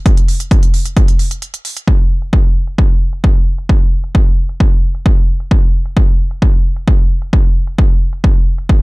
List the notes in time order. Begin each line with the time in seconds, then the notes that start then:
0.06 kick, closed hi-hat
0.17 closed hi-hat
0.28 open hi-hat
0.40 closed hi-hat
0.51 kick, closed hi-hat
0.63 closed hi-hat
0.74 open hi-hat
0.86 closed hi-hat
0.97 kick, closed hi-hat
1.08 closed hi-hat
1.19 open hi-hat
1.31 closed hi-hat
1.42 closed hi-hat
1.54 closed hi-hat
1.65 open hi-hat
1.77 closed hi-hat
1.88 kick
1.99 closed hi-hat
2.22 closed hi-hat
2.33 kick
2.45 closed hi-hat
2.67 closed hi-hat
2.78 kick
2.90 closed hi-hat
3.13 closed hi-hat
3.24 kick
3.36 closed hi-hat
3.58 closed hi-hat
3.69 kick
3.81 closed hi-hat
4.04 closed hi-hat
4.15 kick
4.27 closed hi-hat
4.49 closed hi-hat
4.60 kick
4.72 closed hi-hat
4.95 closed hi-hat
5.06 kick
5.17 closed hi-hat
5.40 closed hi-hat
5.51 kick
5.63 closed hi-hat
5.86 closed hi-hat
5.97 kick
6.08 closed hi-hat
6.31 closed hi-hat
6.42 kick
6.54 closed hi-hat
6.76 closed hi-hat
6.88 kick
6.99 closed hi-hat
7.22 closed hi-hat
7.33 kick
7.45 closed hi-hat
7.67 closed hi-hat
7.79 kick
7.90 closed hi-hat
8.13 closed hi-hat
8.24 kick
8.36 closed hi-hat
8.58 closed hi-hat
8.69 kick